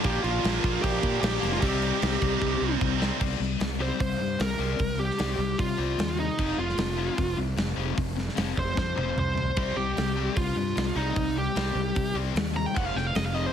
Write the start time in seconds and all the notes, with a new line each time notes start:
0.02 A#1 A#2 D3 F3 A#3 G4, kick, crash
0.07 D4
0.24 A#1 F4, crash
0.44 A#1, snare, crash
0.64 A#1, kick, crash
0.82 A#1 G4, kick, crash
1.03 A#2, kick, crash
1.21 A#1 G4, snare, crash
1.40 F1 A#2 F3 A#3, crash
1.44 snare
1.53 F4, snare
1.61 C2 C3 G3 C4 D#4 G4, kick, crash
1.82 crash
2.02 C2, snare, crash
2.22 C2, kick, crash
2.42 C2, kick
2.61 C2
2.81 C2, kick
2.99 C3 G3 C4, snare
3.19 C2 C3 G3 C4, kick, crash
3.40 C2 C3 G3, snare
3.59 C2 C3 G3, snare, open hi-hat
3.79 C3 G3 C4 C5
3.99 C2 C3 G3 C5, kick, open hi-hat
4.18 G2 C3 G3
4.39 C2 C3 G3 A#4, snare, open hi-hat
4.58 C2 C3 G3 C4
4.79 C2 C3 G3, kick, open hi-hat
4.98 C3 G3 G4
5.11 snare
5.18 C2 C3 G3 C4, snare, open hi-hat
5.38 C2 C3 G3
5.58 C3 G3 F4, kick, open hi-hat
5.77 C2 C3 G3 C4
5.98 D#2 C3 G3, snare, open hi-hat
6.17 C3 G3 D#4
6.38 F1 F2 C3 F3, kick, crash
6.58 F1 F2 C3 F4
6.69 snare
6.77 F1 F2 C3, snare, open hi-hat
6.97 F2 C3 F3
7.18 F1 F2 C3, kick, open hi-hat
7.37 C2 F2 C3
7.57 F1 F2 C3, snare, open hi-hat
7.76 F1 F2 C3 F3
7.95 F1 F2 C3, kick, open hi-hat
8.16 F2 C3, snare
8.29 snare
8.35 F1 F2 C3 F3, snare, open hi-hat
8.56 F1 F2 C3 C5, kick
8.75 F2 C3 C5, kick, snare
8.95 F1 F2 C3 F3, high tom
9.14 C2 F2 C3, mid tom
9.19 C5
9.35 F2 C3, floor tom
9.56 C2 C3 G3 C4, kick, crash
9.76 C2 C3 G3 G4
9.96 C2 C3 G3, snare, open hi-hat
10.16 C3 G3 C4
10.36 C2 C3 G3 F4, kick, open hi-hat
10.56 G2 C3 G3
10.76 C2 C3 G3, snare, open hi-hat
10.96 C2 C3 G3 C4 D#4
11.15 C2 C3 G3, kick, open hi-hat
11.36 C3 G3 G4
11.55 C2 C3 G3 C4, snare, open hi-hat
11.75 C2 C3 G3
11.95 C3 G3, kick, open hi-hat
12.14 C2 C3 G3 C4
12.34 D#2 C3 G3, snare, open hi-hat
12.54 C3 G3 A#5
12.66 G5
12.73 F1 F2 C3 F3 F#5, kick, crash
12.86 F5
12.94 F1 F2 C3 G5, snare
13.07 F5
13.15 F1 F2 C3 D#5, snare, open hi-hat
13.26 F5
13.33 F2 C3 F3 D#5
13.46 C5